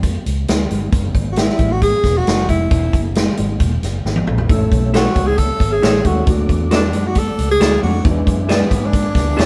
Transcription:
Already playing: F2
0.03 kick, closed hi-hat
0.26 C#2, closed hi-hat
0.48 D2, snare, closed hi-hat
0.70 G1, closed hi-hat
0.92 F#1, kick, closed hi-hat
1.15 G#1, kick, closed hi-hat
1.32 F#4
1.36 E4, snare, closed hi-hat
1.49 snare
1.59 A1, kick, closed hi-hat
1.71 F#4
1.82 G#4, kick, closed hi-hat
2.04 E1, kick, snare, closed hi-hat
2.17 F#4
2.27 F#1, snare, closed hi-hat
2.49 F1 E4, kick, closed hi-hat
2.71 E1, kick, closed hi-hat
2.93 F#1, kick, closed hi-hat
3.15 snare, closed hi-hat
3.37 G#1, closed hi-hat
3.60 E1, kick, closed hi-hat
3.83 F#1, snare, closed hi-hat
4.05 G#1, snare
4.16 high tom
4.27 A#1, mid tom
4.38 floor tom
4.49 A1 A3 C#4 E4 A4 C#5 E5 E6, kick, closed hi-hat
4.72 B1, kick, closed hi-hat
4.94 E4 F#4 A4 C#5, snare, closed hi-hat
5.06 snare
5.16 C#2, kick, closed hi-hat
5.27 G#4
5.38 A4, kick, closed hi-hat
5.60 G#1, kick, closed hi-hat
5.72 G#4
5.82 A1 E4 A4 C#5, snare, closed hi-hat
6.05 D#2 A3 C#4 E4 F#4 A4, kick, closed hi-hat
6.27 D2 F#3 A3 D4 F#4 D5 F#5 D6, kick, closed hi-hat
6.49 E2, kick, closed hi-hat
6.71 F#4 A4 D5, snare, closed hi-hat
6.75 D4
6.93 F#2, closed hi-hat
7.07 F#4
7.15 A4, kick, closed hi-hat
7.39 C#2, closed hi-hat
7.51 G#4
7.60 D2 F#4 A4 D5, snare, closed hi-hat
7.82 F2 F#3 A3 D4 F#4, open hi-hat
8.03 E2 F#3 B3 D4 E4 B4 E5 G#5, kick, closed hi-hat
8.10 G#3
8.27 F#2, kick, closed hi-hat
8.49 B3 E4 G#4 D5, snare, closed hi-hat
8.71 G#2, kick, closed hi-hat
8.86 D4
8.93 kick, closed hi-hat
9.15 D2, kick, snare, closed hi-hat
9.37 E2 E4 G#4 D5, snare, closed hi-hat
9.41 C#4

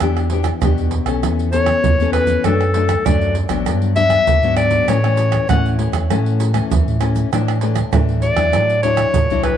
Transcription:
0.00 E2 E3 B3 D4 G4, pandeiro, tamborim, shaker, surdo
0.17 pandeiro, tamborim, shaker
0.30 B3 D4 G4, pandeiro
0.44 pandeiro, tamborim, shaker, surdo
0.61 E2 B2 B3 D4 G4, pandeiro, tamborim, shaker, surdo
0.78 pandeiro, shaker
0.91 pandeiro
1.05 B1 B3 C#4 A4, pandeiro, tamborim, shaker, surdo
1.23 E2 E3, pandeiro, tamborim, shaker, surdo
1.39 pandeiro, shaker
1.52 B3 C#4 A4 C#5, pandeiro, shaker, surdo
1.66 pandeiro, tamborim, shaker, surdo
1.83 E2 E3, pandeiro, shaker, surdo
1.99 E2 B3 C#4 A4, pandeiro, shaker
2.12 B4, pandeiro, tamborim
2.27 pandeiro, shaker, surdo
2.44 F#2 F#3 A3 D4 A4, pandeiro, tamborim, shaker, surdo
2.61 pandeiro, tamborim, shaker
2.74 F#3 A3 D4, pandeiro
2.89 pandeiro, tamborim, shaker, surdo
3.06 F#2 F#3 A3 D4 D5, pandeiro, tamborim, shaker, surdo
3.21 pandeiro, shaker
3.35 pandeiro, shaker
3.49 A1 F#3 B3 D4, pandeiro, tamborim, shaker, surdo
3.66 G2, pandeiro, tamborim, shaker, surdo
3.82 pandeiro, shaker
3.96 F#3 B3 D4 E5, pandeiro, surdo
4.10 pandeiro, tamborim, shaker, surdo
4.27 D2 D3, pandeiro, shaker, surdo
4.42 G#2 F#3 B3 D4, pandeiro, shaker
4.56 D5, pandeiro, tamborim
4.71 pandeiro, shaker, surdo
4.87 A2 E3 A3 C#4 C#5, pandeiro, tamborim, shaker, surdo
5.04 E3 A3 C#4, pandeiro, tamborim, shaker
5.17 pandeiro, shaker
5.32 pandeiro, tamborim, shaker, surdo
5.49 A2 E3 A3 C#4 F#5, pandeiro, tamborim, shaker, surdo
5.66 pandeiro, shaker
5.79 E3 A3 C#4, pandeiro
5.92 E2, pandeiro, tamborim, shaker, surdo
6.09 A2 E3 A3 C#4, pandeiro, tamborim, shaker, surdo
6.26 pandeiro, shaker
6.40 pandeiro, shaker
6.53 E3 A3 C#4, pandeiro, tamborim, shaker, surdo
6.71 E2 E3, pandeiro, shaker, surdo
6.87 A2, pandeiro, shaker
7.01 E3 A3 C#4, pandeiro, tamborim, shaker
7.16 pandeiro, shaker, surdo
7.32 A2 E3 A3 D4, pandeiro, tamborim, shaker, surdo
7.48 pandeiro, tamborim, shaker
7.61 E3 A3 D4, pandeiro
7.76 pandeiro, tamborim, shaker, surdo
7.93 A2 E3 A3 D4, pandeiro, tamborim, shaker, surdo
8.09 pandeiro, shaker
8.22 D5, pandeiro, shaker
8.37 E2 F#3 D4 E4, pandeiro, tamborim, shaker, surdo
8.53 A2, pandeiro, tamborim, shaker, surdo
8.70 pandeiro, shaker
8.82 F#3 D4 E4 C#5, pandeiro, shaker, surdo
8.97 pandeiro, tamborim, shaker, surdo
9.14 A2, pandeiro, shaker, surdo
9.30 C2 F#3 D4 E4, pandeiro, shaker
9.43 B4, pandeiro, tamborim

